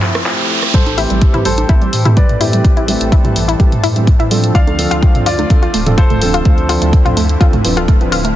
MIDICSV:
0, 0, Header, 1, 8, 480
1, 0, Start_track
1, 0, Key_signature, 0, "minor"
1, 0, Tempo, 476190
1, 747, Time_signature, 4, 2, 24, 8
1, 8425, End_track
2, 0, Start_track
2, 0, Title_t, "Grand piano"
2, 0, Program_c, 0, 0
2, 0, Note_on_c, 0, 69, 85
2, 655, Note_off_c, 0, 69, 0
2, 746, Note_on_c, 0, 69, 72
2, 746, Note_on_c, 0, 72, 91
2, 1375, Note_off_c, 0, 69, 0
2, 1375, Note_off_c, 0, 72, 0
2, 1465, Note_on_c, 0, 72, 90
2, 1466, Note_on_c, 0, 69, 74
2, 2094, Note_off_c, 0, 72, 0
2, 2095, Note_off_c, 0, 69, 0
2, 2187, Note_on_c, 0, 71, 70
2, 2187, Note_on_c, 0, 74, 86
2, 4496, Note_off_c, 0, 71, 0
2, 4496, Note_off_c, 0, 74, 0
2, 4586, Note_on_c, 0, 74, 76
2, 4587, Note_on_c, 0, 77, 95
2, 5215, Note_off_c, 0, 74, 0
2, 5215, Note_off_c, 0, 77, 0
2, 5306, Note_on_c, 0, 65, 74
2, 5306, Note_on_c, 0, 74, 90
2, 5935, Note_off_c, 0, 65, 0
2, 5935, Note_off_c, 0, 74, 0
2, 6026, Note_on_c, 0, 72, 89
2, 6027, Note_on_c, 0, 69, 73
2, 8335, Note_off_c, 0, 69, 0
2, 8335, Note_off_c, 0, 72, 0
2, 8425, End_track
3, 0, Start_track
3, 0, Title_t, "Analog synth pad"
3, 0, Program_c, 1, 89
3, 0, Note_on_c, 1, 53, 77
3, 0, Note_on_c, 1, 57, 71
3, 0, Note_on_c, 1, 60, 71
3, 0, Note_on_c, 1, 64, 72
3, 0, Note_on_c, 1, 67, 84
3, 705, Note_off_c, 1, 67, 0
3, 708, Note_off_c, 1, 53, 0
3, 709, Note_off_c, 1, 57, 0
3, 709, Note_off_c, 1, 60, 0
3, 728, Note_off_c, 1, 64, 0
3, 745, Note_on_c, 1, 55, 73
3, 745, Note_on_c, 1, 57, 71
3, 745, Note_on_c, 1, 60, 73
3, 746, Note_on_c, 1, 52, 77
3, 746, Note_on_c, 1, 67, 87
3, 2647, Note_off_c, 1, 67, 0
3, 2664, Note_on_c, 1, 69, 86
3, 4547, Note_off_c, 1, 55, 0
3, 4548, Note_off_c, 1, 52, 0
3, 4566, Note_off_c, 1, 69, 0
3, 4587, Note_on_c, 1, 50, 80
3, 4587, Note_on_c, 1, 53, 73
3, 4587, Note_on_c, 1, 65, 90
3, 6487, Note_off_c, 1, 65, 0
3, 6505, Note_on_c, 1, 64, 88
3, 8386, Note_off_c, 1, 57, 0
3, 8386, Note_off_c, 1, 60, 0
3, 8388, Note_off_c, 1, 53, 0
3, 8425, Note_off_c, 1, 50, 0
3, 8425, Note_off_c, 1, 64, 0
3, 8425, End_track
4, 0, Start_track
4, 0, Title_t, "Felt piano"
4, 0, Program_c, 2, 0
4, 0, Note_on_c, 2, 53, 72
4, 0, Note_on_c, 2, 57, 68
4, 0, Note_on_c, 2, 62, 67
4, 0, Note_on_c, 2, 67, 82
4, 719, Note_off_c, 2, 53, 0
4, 719, Note_off_c, 2, 57, 0
4, 719, Note_off_c, 2, 62, 0
4, 720, Note_off_c, 2, 67, 0
4, 986, Note_on_c, 2, 52, 85
4, 986, Note_on_c, 2, 60, 76
4, 987, Note_on_c, 2, 57, 77
4, 987, Note_on_c, 2, 67, 94
4, 1322, Note_off_c, 2, 52, 0
4, 1322, Note_off_c, 2, 57, 0
4, 1322, Note_off_c, 2, 60, 0
4, 1322, Note_off_c, 2, 67, 0
4, 1352, Note_on_c, 2, 52, 69
4, 1352, Note_on_c, 2, 57, 66
4, 1352, Note_on_c, 2, 60, 68
4, 1352, Note_on_c, 2, 67, 80
4, 1434, Note_off_c, 2, 52, 0
4, 1434, Note_off_c, 2, 57, 0
4, 1434, Note_off_c, 2, 60, 0
4, 1434, Note_off_c, 2, 67, 0
4, 1706, Note_on_c, 2, 57, 81
4, 1706, Note_on_c, 2, 60, 80
4, 1706, Note_on_c, 2, 67, 98
4, 1707, Note_on_c, 2, 52, 88
4, 1796, Note_off_c, 2, 57, 0
4, 1796, Note_off_c, 2, 60, 0
4, 1796, Note_off_c, 2, 67, 0
4, 1797, Note_off_c, 2, 52, 0
4, 2072, Note_on_c, 2, 52, 86
4, 2072, Note_on_c, 2, 57, 82
4, 2072, Note_on_c, 2, 60, 81
4, 2072, Note_on_c, 2, 67, 96
4, 2154, Note_off_c, 2, 52, 0
4, 2154, Note_off_c, 2, 57, 0
4, 2154, Note_off_c, 2, 60, 0
4, 2154, Note_off_c, 2, 67, 0
4, 2426, Note_on_c, 2, 52, 85
4, 2426, Note_on_c, 2, 57, 79
4, 2426, Note_on_c, 2, 60, 79
4, 2426, Note_on_c, 2, 67, 97
4, 2879, Note_off_c, 2, 52, 0
4, 2879, Note_off_c, 2, 57, 0
4, 2879, Note_off_c, 2, 60, 0
4, 2879, Note_off_c, 2, 67, 0
4, 2906, Note_on_c, 2, 52, 82
4, 2906, Note_on_c, 2, 60, 78
4, 2906, Note_on_c, 2, 67, 92
4, 2907, Note_on_c, 2, 57, 77
4, 3242, Note_off_c, 2, 52, 0
4, 3242, Note_off_c, 2, 57, 0
4, 3242, Note_off_c, 2, 60, 0
4, 3242, Note_off_c, 2, 67, 0
4, 3272, Note_on_c, 2, 52, 72
4, 3272, Note_on_c, 2, 57, 66
4, 3272, Note_on_c, 2, 60, 66
4, 3272, Note_on_c, 2, 67, 82
4, 3354, Note_off_c, 2, 52, 0
4, 3354, Note_off_c, 2, 57, 0
4, 3354, Note_off_c, 2, 60, 0
4, 3354, Note_off_c, 2, 67, 0
4, 3627, Note_on_c, 2, 52, 88
4, 3627, Note_on_c, 2, 57, 82
4, 3627, Note_on_c, 2, 60, 81
4, 3627, Note_on_c, 2, 67, 96
4, 3716, Note_off_c, 2, 52, 0
4, 3716, Note_off_c, 2, 57, 0
4, 3716, Note_off_c, 2, 60, 0
4, 3717, Note_off_c, 2, 67, 0
4, 3992, Note_on_c, 2, 52, 90
4, 3992, Note_on_c, 2, 57, 81
4, 3992, Note_on_c, 2, 60, 80
4, 3992, Note_on_c, 2, 67, 94
4, 4074, Note_off_c, 2, 52, 0
4, 4074, Note_off_c, 2, 57, 0
4, 4074, Note_off_c, 2, 60, 0
4, 4074, Note_off_c, 2, 67, 0
4, 4346, Note_on_c, 2, 53, 89
4, 4346, Note_on_c, 2, 60, 79
4, 4346, Note_on_c, 2, 62, 79
4, 4346, Note_on_c, 2, 69, 95
4, 4799, Note_off_c, 2, 53, 0
4, 4799, Note_off_c, 2, 60, 0
4, 4799, Note_off_c, 2, 62, 0
4, 4799, Note_off_c, 2, 69, 0
4, 4825, Note_on_c, 2, 69, 93
4, 4826, Note_on_c, 2, 53, 86
4, 4826, Note_on_c, 2, 60, 76
4, 4826, Note_on_c, 2, 62, 79
4, 5161, Note_off_c, 2, 69, 0
4, 5162, Note_off_c, 2, 53, 0
4, 5162, Note_off_c, 2, 60, 0
4, 5162, Note_off_c, 2, 62, 0
4, 5192, Note_on_c, 2, 53, 76
4, 5192, Note_on_c, 2, 60, 69
4, 5193, Note_on_c, 2, 62, 66
4, 5193, Note_on_c, 2, 69, 81
4, 5274, Note_off_c, 2, 53, 0
4, 5274, Note_off_c, 2, 60, 0
4, 5274, Note_off_c, 2, 62, 0
4, 5274, Note_off_c, 2, 69, 0
4, 5546, Note_on_c, 2, 62, 82
4, 5547, Note_on_c, 2, 53, 90
4, 5547, Note_on_c, 2, 60, 81
4, 5547, Note_on_c, 2, 69, 100
4, 5636, Note_off_c, 2, 53, 0
4, 5636, Note_off_c, 2, 60, 0
4, 5636, Note_off_c, 2, 62, 0
4, 5637, Note_off_c, 2, 69, 0
4, 5913, Note_on_c, 2, 53, 91
4, 5913, Note_on_c, 2, 60, 82
4, 5913, Note_on_c, 2, 62, 80
4, 5914, Note_on_c, 2, 69, 96
4, 5994, Note_off_c, 2, 53, 0
4, 5994, Note_off_c, 2, 60, 0
4, 5994, Note_off_c, 2, 62, 0
4, 5994, Note_off_c, 2, 69, 0
4, 6267, Note_on_c, 2, 62, 79
4, 6267, Note_on_c, 2, 69, 97
4, 6268, Note_on_c, 2, 53, 85
4, 6268, Note_on_c, 2, 60, 82
4, 6720, Note_off_c, 2, 53, 0
4, 6720, Note_off_c, 2, 60, 0
4, 6720, Note_off_c, 2, 62, 0
4, 6720, Note_off_c, 2, 69, 0
4, 6747, Note_on_c, 2, 53, 85
4, 6747, Note_on_c, 2, 60, 78
4, 6747, Note_on_c, 2, 62, 80
4, 6747, Note_on_c, 2, 69, 96
4, 7082, Note_off_c, 2, 53, 0
4, 7083, Note_off_c, 2, 60, 0
4, 7083, Note_off_c, 2, 62, 0
4, 7083, Note_off_c, 2, 69, 0
4, 7112, Note_on_c, 2, 53, 76
4, 7112, Note_on_c, 2, 60, 68
4, 7112, Note_on_c, 2, 62, 66
4, 7112, Note_on_c, 2, 69, 82
4, 7194, Note_off_c, 2, 53, 0
4, 7194, Note_off_c, 2, 60, 0
4, 7194, Note_off_c, 2, 62, 0
4, 7194, Note_off_c, 2, 69, 0
4, 7466, Note_on_c, 2, 53, 90
4, 7466, Note_on_c, 2, 69, 98
4, 7467, Note_on_c, 2, 60, 83
4, 7467, Note_on_c, 2, 62, 84
4, 7556, Note_off_c, 2, 53, 0
4, 7556, Note_off_c, 2, 62, 0
4, 7556, Note_off_c, 2, 69, 0
4, 7557, Note_off_c, 2, 60, 0
4, 7706, Note_on_c, 2, 60, 76
4, 7707, Note_on_c, 2, 53, 81
4, 7707, Note_on_c, 2, 62, 77
4, 7707, Note_on_c, 2, 71, 91
4, 7813, Note_off_c, 2, 60, 0
4, 7813, Note_off_c, 2, 71, 0
4, 7814, Note_off_c, 2, 53, 0
4, 7814, Note_off_c, 2, 62, 0
4, 7833, Note_on_c, 2, 53, 82
4, 7833, Note_on_c, 2, 60, 79
4, 7833, Note_on_c, 2, 62, 78
4, 7833, Note_on_c, 2, 69, 95
4, 7914, Note_off_c, 2, 53, 0
4, 7914, Note_off_c, 2, 60, 0
4, 7914, Note_off_c, 2, 62, 0
4, 7914, Note_off_c, 2, 69, 0
4, 8072, Note_on_c, 2, 62, 84
4, 8072, Note_on_c, 2, 71, 103
4, 8073, Note_on_c, 2, 53, 92
4, 8073, Note_on_c, 2, 60, 85
4, 8204, Note_off_c, 2, 62, 0
4, 8204, Note_off_c, 2, 71, 0
4, 8205, Note_off_c, 2, 53, 0
4, 8205, Note_off_c, 2, 60, 0
4, 8425, End_track
5, 0, Start_track
5, 0, Title_t, "Synth pluck"
5, 0, Program_c, 3, 84
5, 745, Note_on_c, 3, 55, 79
5, 812, Note_off_c, 3, 55, 0
5, 985, Note_on_c, 3, 64, 101
5, 1025, Note_off_c, 3, 64, 0
5, 1112, Note_on_c, 3, 55, 77
5, 1172, Note_off_c, 3, 55, 0
5, 1350, Note_on_c, 3, 64, 100
5, 1387, Note_off_c, 3, 64, 0
5, 1465, Note_on_c, 3, 55, 76
5, 1532, Note_off_c, 3, 55, 0
5, 1704, Note_on_c, 3, 64, 102
5, 1745, Note_off_c, 3, 64, 0
5, 1831, Note_on_c, 3, 55, 74
5, 1891, Note_off_c, 3, 55, 0
5, 2070, Note_on_c, 3, 64, 96
5, 2107, Note_off_c, 3, 64, 0
5, 2184, Note_on_c, 3, 55, 80
5, 2251, Note_off_c, 3, 55, 0
5, 2425, Note_on_c, 3, 64, 99
5, 2465, Note_off_c, 3, 64, 0
5, 2551, Note_on_c, 3, 55, 75
5, 2612, Note_off_c, 3, 55, 0
5, 2791, Note_on_c, 3, 64, 95
5, 2828, Note_off_c, 3, 64, 0
5, 2904, Note_on_c, 3, 55, 73
5, 2971, Note_off_c, 3, 55, 0
5, 3144, Note_on_c, 3, 64, 98
5, 3185, Note_off_c, 3, 64, 0
5, 3271, Note_on_c, 3, 55, 76
5, 3332, Note_off_c, 3, 55, 0
5, 3510, Note_on_c, 3, 64, 98
5, 3547, Note_off_c, 3, 64, 0
5, 3626, Note_on_c, 3, 55, 81
5, 3692, Note_off_c, 3, 55, 0
5, 3865, Note_on_c, 3, 64, 101
5, 3905, Note_off_c, 3, 64, 0
5, 3990, Note_on_c, 3, 55, 74
5, 4051, Note_off_c, 3, 55, 0
5, 4230, Note_on_c, 3, 64, 101
5, 4267, Note_off_c, 3, 64, 0
5, 4344, Note_on_c, 3, 55, 73
5, 4411, Note_off_c, 3, 55, 0
5, 4584, Note_on_c, 3, 65, 100
5, 4625, Note_off_c, 3, 65, 0
5, 4710, Note_on_c, 3, 57, 74
5, 4771, Note_off_c, 3, 57, 0
5, 4950, Note_on_c, 3, 65, 103
5, 4987, Note_off_c, 3, 65, 0
5, 5063, Note_on_c, 3, 57, 80
5, 5131, Note_off_c, 3, 57, 0
5, 5304, Note_on_c, 3, 65, 100
5, 5345, Note_off_c, 3, 65, 0
5, 5430, Note_on_c, 3, 57, 75
5, 5491, Note_off_c, 3, 57, 0
5, 5670, Note_on_c, 3, 65, 100
5, 5707, Note_off_c, 3, 65, 0
5, 5785, Note_on_c, 3, 57, 76
5, 5851, Note_off_c, 3, 57, 0
5, 6024, Note_on_c, 3, 65, 99
5, 6065, Note_off_c, 3, 65, 0
5, 6151, Note_on_c, 3, 57, 76
5, 6211, Note_off_c, 3, 57, 0
5, 6390, Note_on_c, 3, 65, 97
5, 6427, Note_off_c, 3, 65, 0
5, 6505, Note_on_c, 3, 57, 81
5, 6572, Note_off_c, 3, 57, 0
5, 6745, Note_on_c, 3, 65, 101
5, 6785, Note_off_c, 3, 65, 0
5, 6871, Note_on_c, 3, 57, 78
5, 6931, Note_off_c, 3, 57, 0
5, 7110, Note_on_c, 3, 65, 99
5, 7147, Note_off_c, 3, 65, 0
5, 7225, Note_on_c, 3, 57, 76
5, 7292, Note_off_c, 3, 57, 0
5, 7464, Note_on_c, 3, 65, 103
5, 7505, Note_off_c, 3, 65, 0
5, 7591, Note_on_c, 3, 57, 73
5, 7652, Note_off_c, 3, 57, 0
5, 7832, Note_on_c, 3, 65, 99
5, 7868, Note_off_c, 3, 65, 0
5, 7944, Note_on_c, 3, 57, 82
5, 8011, Note_off_c, 3, 57, 0
5, 8185, Note_on_c, 3, 65, 97
5, 8225, Note_off_c, 3, 65, 0
5, 8311, Note_on_c, 3, 57, 75
5, 8371, Note_off_c, 3, 57, 0
5, 8425, End_track
6, 0, Start_track
6, 0, Title_t, "Detuned saw bass"
6, 0, Program_c, 4, 39
6, 746, Note_on_c, 4, 33, 94
6, 1069, Note_off_c, 4, 33, 0
6, 1112, Note_on_c, 4, 33, 82
6, 1427, Note_off_c, 4, 33, 0
6, 1466, Note_on_c, 4, 33, 77
6, 1657, Note_off_c, 4, 33, 0
6, 1706, Note_on_c, 4, 33, 88
6, 1897, Note_off_c, 4, 33, 0
6, 1947, Note_on_c, 4, 45, 98
6, 2269, Note_off_c, 4, 45, 0
6, 2313, Note_on_c, 4, 45, 95
6, 2627, Note_off_c, 4, 45, 0
6, 2666, Note_on_c, 4, 33, 96
6, 2989, Note_off_c, 4, 33, 0
6, 3032, Note_on_c, 4, 33, 82
6, 3347, Note_off_c, 4, 33, 0
6, 3387, Note_on_c, 4, 33, 77
6, 3577, Note_off_c, 4, 33, 0
6, 3626, Note_on_c, 4, 33, 87
6, 3817, Note_off_c, 4, 33, 0
6, 3867, Note_on_c, 4, 45, 102
6, 4189, Note_off_c, 4, 45, 0
6, 4232, Note_on_c, 4, 45, 95
6, 4547, Note_off_c, 4, 45, 0
6, 4586, Note_on_c, 4, 38, 98
6, 4909, Note_off_c, 4, 38, 0
6, 4953, Note_on_c, 4, 38, 85
6, 5268, Note_off_c, 4, 38, 0
6, 5307, Note_on_c, 4, 38, 79
6, 5497, Note_off_c, 4, 38, 0
6, 5546, Note_on_c, 4, 38, 89
6, 5737, Note_off_c, 4, 38, 0
6, 5785, Note_on_c, 4, 26, 100
6, 6108, Note_off_c, 4, 26, 0
6, 6152, Note_on_c, 4, 26, 96
6, 6467, Note_off_c, 4, 26, 0
6, 6506, Note_on_c, 4, 38, 96
6, 6829, Note_off_c, 4, 38, 0
6, 6872, Note_on_c, 4, 38, 84
6, 7187, Note_off_c, 4, 38, 0
6, 7226, Note_on_c, 4, 38, 78
6, 7417, Note_off_c, 4, 38, 0
6, 7466, Note_on_c, 4, 38, 89
6, 7657, Note_off_c, 4, 38, 0
6, 7707, Note_on_c, 4, 26, 103
6, 8029, Note_off_c, 4, 26, 0
6, 8072, Note_on_c, 4, 26, 95
6, 8387, Note_off_c, 4, 26, 0
6, 8425, End_track
7, 0, Start_track
7, 0, Title_t, "Riser"
7, 0, Program_c, 5, 103
7, 0, Note_on_c, 5, 60, 72
7, 747, Note_off_c, 5, 60, 0
7, 8425, End_track
8, 0, Start_track
8, 0, Title_t, "Drums"
8, 24, Note_on_c, 9, 39, 58
8, 124, Note_off_c, 9, 39, 0
8, 152, Note_on_c, 9, 37, 76
8, 252, Note_off_c, 9, 37, 0
8, 264, Note_on_c, 9, 39, 108
8, 364, Note_off_c, 9, 39, 0
8, 632, Note_on_c, 9, 37, 37
8, 733, Note_off_c, 9, 37, 0
8, 746, Note_on_c, 9, 36, 110
8, 746, Note_on_c, 9, 42, 51
8, 847, Note_off_c, 9, 36, 0
8, 847, Note_off_c, 9, 42, 0
8, 872, Note_on_c, 9, 42, 26
8, 872, Note_on_c, 9, 63, 82
8, 972, Note_off_c, 9, 63, 0
8, 973, Note_off_c, 9, 42, 0
8, 986, Note_on_c, 9, 46, 96
8, 1087, Note_off_c, 9, 46, 0
8, 1111, Note_on_c, 9, 42, 51
8, 1212, Note_off_c, 9, 42, 0
8, 1225, Note_on_c, 9, 42, 53
8, 1226, Note_on_c, 9, 36, 110
8, 1326, Note_off_c, 9, 42, 0
8, 1327, Note_off_c, 9, 36, 0
8, 1351, Note_on_c, 9, 42, 26
8, 1352, Note_on_c, 9, 45, 73
8, 1452, Note_off_c, 9, 42, 0
8, 1453, Note_off_c, 9, 45, 0
8, 1464, Note_on_c, 9, 46, 98
8, 1565, Note_off_c, 9, 46, 0
8, 1591, Note_on_c, 9, 42, 52
8, 1592, Note_on_c, 9, 63, 80
8, 1692, Note_off_c, 9, 42, 0
8, 1693, Note_off_c, 9, 63, 0
8, 1704, Note_on_c, 9, 42, 51
8, 1706, Note_on_c, 9, 36, 115
8, 1805, Note_off_c, 9, 42, 0
8, 1807, Note_off_c, 9, 36, 0
8, 1831, Note_on_c, 9, 42, 27
8, 1932, Note_off_c, 9, 42, 0
8, 1945, Note_on_c, 9, 46, 101
8, 2046, Note_off_c, 9, 46, 0
8, 2071, Note_on_c, 9, 42, 50
8, 2072, Note_on_c, 9, 45, 84
8, 2172, Note_off_c, 9, 42, 0
8, 2173, Note_off_c, 9, 45, 0
8, 2186, Note_on_c, 9, 36, 112
8, 2186, Note_on_c, 9, 42, 52
8, 2286, Note_off_c, 9, 42, 0
8, 2287, Note_off_c, 9, 36, 0
8, 2312, Note_on_c, 9, 42, 26
8, 2312, Note_on_c, 9, 45, 74
8, 2413, Note_off_c, 9, 42, 0
8, 2413, Note_off_c, 9, 45, 0
8, 2426, Note_on_c, 9, 46, 97
8, 2527, Note_off_c, 9, 46, 0
8, 2552, Note_on_c, 9, 42, 52
8, 2653, Note_off_c, 9, 42, 0
8, 2666, Note_on_c, 9, 36, 116
8, 2667, Note_on_c, 9, 42, 51
8, 2767, Note_off_c, 9, 36, 0
8, 2767, Note_off_c, 9, 42, 0
8, 2792, Note_on_c, 9, 42, 25
8, 2893, Note_off_c, 9, 42, 0
8, 2906, Note_on_c, 9, 46, 104
8, 3006, Note_off_c, 9, 46, 0
8, 3033, Note_on_c, 9, 42, 50
8, 3134, Note_off_c, 9, 42, 0
8, 3146, Note_on_c, 9, 36, 117
8, 3147, Note_on_c, 9, 42, 51
8, 3247, Note_off_c, 9, 36, 0
8, 3248, Note_off_c, 9, 42, 0
8, 3271, Note_on_c, 9, 45, 78
8, 3273, Note_on_c, 9, 42, 26
8, 3372, Note_off_c, 9, 45, 0
8, 3374, Note_off_c, 9, 42, 0
8, 3387, Note_on_c, 9, 46, 104
8, 3488, Note_off_c, 9, 46, 0
8, 3514, Note_on_c, 9, 42, 52
8, 3615, Note_off_c, 9, 42, 0
8, 3626, Note_on_c, 9, 36, 118
8, 3627, Note_on_c, 9, 42, 51
8, 3727, Note_off_c, 9, 36, 0
8, 3728, Note_off_c, 9, 42, 0
8, 3752, Note_on_c, 9, 45, 88
8, 3753, Note_on_c, 9, 42, 26
8, 3853, Note_off_c, 9, 45, 0
8, 3854, Note_off_c, 9, 42, 0
8, 3867, Note_on_c, 9, 46, 102
8, 3967, Note_off_c, 9, 46, 0
8, 3993, Note_on_c, 9, 42, 50
8, 4093, Note_off_c, 9, 42, 0
8, 4106, Note_on_c, 9, 36, 117
8, 4106, Note_on_c, 9, 42, 51
8, 4207, Note_off_c, 9, 36, 0
8, 4207, Note_off_c, 9, 42, 0
8, 4233, Note_on_c, 9, 42, 26
8, 4333, Note_off_c, 9, 42, 0
8, 4346, Note_on_c, 9, 46, 103
8, 4446, Note_off_c, 9, 46, 0
8, 4472, Note_on_c, 9, 42, 51
8, 4573, Note_off_c, 9, 42, 0
8, 4586, Note_on_c, 9, 36, 117
8, 4587, Note_on_c, 9, 42, 51
8, 4687, Note_off_c, 9, 36, 0
8, 4687, Note_off_c, 9, 42, 0
8, 4711, Note_on_c, 9, 63, 78
8, 4712, Note_on_c, 9, 42, 25
8, 4812, Note_off_c, 9, 63, 0
8, 4813, Note_off_c, 9, 42, 0
8, 4826, Note_on_c, 9, 46, 102
8, 4927, Note_off_c, 9, 46, 0
8, 4952, Note_on_c, 9, 42, 48
8, 5053, Note_off_c, 9, 42, 0
8, 5066, Note_on_c, 9, 36, 122
8, 5066, Note_on_c, 9, 42, 49
8, 5167, Note_off_c, 9, 36, 0
8, 5167, Note_off_c, 9, 42, 0
8, 5191, Note_on_c, 9, 42, 25
8, 5191, Note_on_c, 9, 45, 79
8, 5292, Note_off_c, 9, 42, 0
8, 5292, Note_off_c, 9, 45, 0
8, 5305, Note_on_c, 9, 46, 109
8, 5406, Note_off_c, 9, 46, 0
8, 5431, Note_on_c, 9, 42, 50
8, 5431, Note_on_c, 9, 63, 77
8, 5532, Note_off_c, 9, 42, 0
8, 5532, Note_off_c, 9, 63, 0
8, 5545, Note_on_c, 9, 42, 49
8, 5546, Note_on_c, 9, 36, 122
8, 5646, Note_off_c, 9, 42, 0
8, 5647, Note_off_c, 9, 36, 0
8, 5671, Note_on_c, 9, 42, 25
8, 5772, Note_off_c, 9, 42, 0
8, 5785, Note_on_c, 9, 46, 105
8, 5886, Note_off_c, 9, 46, 0
8, 5911, Note_on_c, 9, 45, 94
8, 5912, Note_on_c, 9, 42, 49
8, 6012, Note_off_c, 9, 45, 0
8, 6013, Note_off_c, 9, 42, 0
8, 6025, Note_on_c, 9, 42, 48
8, 6026, Note_on_c, 9, 36, 121
8, 6126, Note_off_c, 9, 42, 0
8, 6127, Note_off_c, 9, 36, 0
8, 6151, Note_on_c, 9, 42, 24
8, 6151, Note_on_c, 9, 45, 80
8, 6252, Note_off_c, 9, 42, 0
8, 6252, Note_off_c, 9, 45, 0
8, 6265, Note_on_c, 9, 46, 102
8, 6366, Note_off_c, 9, 46, 0
8, 6392, Note_on_c, 9, 42, 51
8, 6492, Note_off_c, 9, 42, 0
8, 6505, Note_on_c, 9, 42, 48
8, 6506, Note_on_c, 9, 36, 115
8, 6606, Note_off_c, 9, 42, 0
8, 6607, Note_off_c, 9, 36, 0
8, 6631, Note_on_c, 9, 42, 24
8, 6732, Note_off_c, 9, 42, 0
8, 6746, Note_on_c, 9, 46, 101
8, 6847, Note_off_c, 9, 46, 0
8, 6872, Note_on_c, 9, 42, 50
8, 6973, Note_off_c, 9, 42, 0
8, 6986, Note_on_c, 9, 36, 118
8, 6986, Note_on_c, 9, 42, 49
8, 7087, Note_off_c, 9, 36, 0
8, 7087, Note_off_c, 9, 42, 0
8, 7111, Note_on_c, 9, 45, 78
8, 7113, Note_on_c, 9, 42, 24
8, 7212, Note_off_c, 9, 45, 0
8, 7214, Note_off_c, 9, 42, 0
8, 7227, Note_on_c, 9, 46, 110
8, 7328, Note_off_c, 9, 46, 0
8, 7352, Note_on_c, 9, 42, 48
8, 7453, Note_off_c, 9, 42, 0
8, 7466, Note_on_c, 9, 36, 122
8, 7467, Note_on_c, 9, 42, 49
8, 7567, Note_off_c, 9, 36, 0
8, 7568, Note_off_c, 9, 42, 0
8, 7592, Note_on_c, 9, 45, 91
8, 7593, Note_on_c, 9, 42, 25
8, 7693, Note_off_c, 9, 45, 0
8, 7694, Note_off_c, 9, 42, 0
8, 7707, Note_on_c, 9, 46, 105
8, 7808, Note_off_c, 9, 46, 0
8, 7833, Note_on_c, 9, 42, 49
8, 7933, Note_off_c, 9, 42, 0
8, 7946, Note_on_c, 9, 36, 122
8, 7947, Note_on_c, 9, 42, 48
8, 8046, Note_off_c, 9, 36, 0
8, 8048, Note_off_c, 9, 42, 0
8, 8073, Note_on_c, 9, 42, 24
8, 8174, Note_off_c, 9, 42, 0
8, 8187, Note_on_c, 9, 46, 104
8, 8288, Note_off_c, 9, 46, 0
8, 8313, Note_on_c, 9, 42, 50
8, 8414, Note_off_c, 9, 42, 0
8, 8425, End_track
0, 0, End_of_file